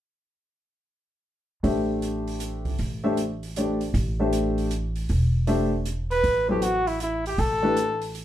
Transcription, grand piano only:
1.63 2.71 A3 soft
1.63 2.71 D4 soft
1.63 2.71 G4 soft
1.63 2.71 C5 soft
1.63 2.71 E5 soft
3.04 3.16 A3 medium
3.04 3.16 D4 soft
3.04 3.16 G4 medium
3.04 3.16 C5 soft
3.04 3.16 E5 medium
3.57 3.79 A3 soft
3.57 3.79 D4 soft
3.57 3.79 G4 soft
3.57 3.79 C5 soft
3.57 3.79 D5 soft
4.20 4.68 A3 soft
4.20 4.69 D4 soft
4.20 4.68 G4 soft
4.20 4.69 C5 soft
4.20 4.69 E5 medium
5.47 5.70 A3 medium
5.47 5.70 D4 medium
5.47 5.70 G4 soft
5.47 5.70 C5 soft
5.47 5.70 E5 medium
6.48 6.61 F#3 medium
6.48 6.60 B3 soft
6.48 6.61 E4 soft
6.48 6.61 A4 soft
6.48 6.61 C5 medium
7.62 7.75 E3 medium
7.62 7.75 A3 soft
7.62 7.75 D4 soft
7.62 7.75 G4 soft
7.62 7.75 B4 medium

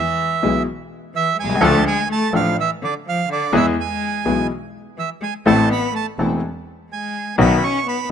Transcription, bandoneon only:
0.00 0.63 E5 medium
1.16 1.37 E5 loud
1.40 1.63 G#5 loud
1.63 1.84 A5 loud
1.87 2.09 G#5 loud
2.12 2.33 A5 loud
2.36 2.57 F5 loud
2.60 2.70 E5 loud
2.84 2.94 D5 medium
3.09 3.29 F5 loud
3.33 3.53 D5 medium
3.56 3.66 E5 loud
3.81 4.47 G#5 medium
4.99 5.10 E5 medium
5.23 5.34 G#5 medium
5.47 5.69 A5 loud
5.72 5.94 B5 loud
5.96 6.06 A5 medium
6.93 7.36 G#5 medium
7.41 7.64 B5 loud
7.63 7.87 C#6 loud
7.88 8.09 B5 loud

